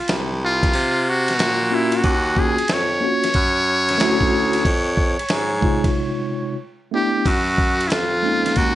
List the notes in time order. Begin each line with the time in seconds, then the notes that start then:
Already playing: F4
0.08 C2, snare, hi-hat pedal, ride
0.45 F4
0.63 kick, snare, ride
0.74 C3, ride
1.09 F#4
1.28 snare, ride
1.39 A#2, snare, hi-hat pedal, ride
1.70 A#3 C#4 E4 F4 F#4
1.92 F#4, ride
2.04 D#2, kick, ride
2.35 A#3 C#4 F4 F#4, kick
2.39 G#4
2.58 F2, ride
2.68 F2, snare, hi-hat pedal, ride
2.73 C#5
3.01 A#3 C#4 F4 F#4
3.24 snare, ride
3.34 F#2, kick, ride
3.89 snare, ride
3.98 D2 A3 C#4 E4 F#4, snare, hi-hat pedal, ride
4.21 kick
4.53 ride
4.65 F2, kick, ride
4.97 kick
5.19 G#2, ride
5.29 G#2, snare, hi-hat pedal, ride
5.61 C3 G#3 D#4 F4, kick
5.84 kick, snare, ride
6.91 A3 B3 D4 E4 G4
7.26 F#2 F#4, kick, ride
7.58 kick
7.81 ride
7.88 F2 E4, snare, hi-hat pedal, ride
7.92 F4
8.22 G#3 A#3 C#4 D#4
8.46 snare, ride
8.56 D#2 F#4, kick, ride